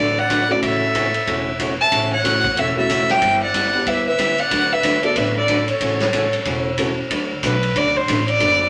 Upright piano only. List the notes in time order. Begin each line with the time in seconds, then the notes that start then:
0.49 A3 C#4 E4 F#4
2.24 A3 C#4 E4 F#4
2.76 A3 C#4 E4 F#4
3.73 B3 D4 E4 G4
5.02 B3 D4 F#4 A4
6.78 C#4 E4 F#4 A4
8.39 A3 B3 D4 F#4 A4